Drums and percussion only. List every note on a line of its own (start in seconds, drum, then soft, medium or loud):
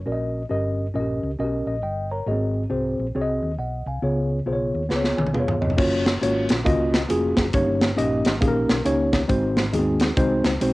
4.90 snare soft
5.04 snare soft
5.18 high tom medium
5.27 high tom medium
5.34 mid tom medium
5.48 mid tom medium
5.62 floor tom medium
5.70 floor tom medium
5.78 kick loud
5.78 crash loud
6.06 snare loud
6.06 closed hi-hat medium
6.23 closed hi-hat medium
6.49 snare loud
6.49 closed hi-hat medium
6.66 kick loud
6.66 closed hi-hat medium
6.94 snare loud
6.94 closed hi-hat medium
7.10 closed hi-hat medium
7.37 kick medium
7.37 snare loud
7.37 closed hi-hat medium
7.53 kick loud
7.53 closed hi-hat medium
7.81 snare loud
7.81 closed hi-hat medium
7.98 closed hi-hat medium
8.25 snare loud
8.25 closed hi-hat medium
8.42 kick loud
8.42 closed hi-hat medium
8.69 snare loud
8.69 closed hi-hat medium
8.86 closed hi-hat medium
9.13 kick medium
9.13 snare loud
9.13 closed hi-hat medium
9.29 kick loud
9.29 closed hi-hat medium
9.57 snare loud
9.57 closed hi-hat medium
9.74 closed hi-hat medium
10.00 snare loud
10.00 closed hi-hat medium
10.17 kick loud
10.17 closed hi-hat medium
10.45 snare loud
10.45 closed hi-hat medium
10.61 closed hi-hat loud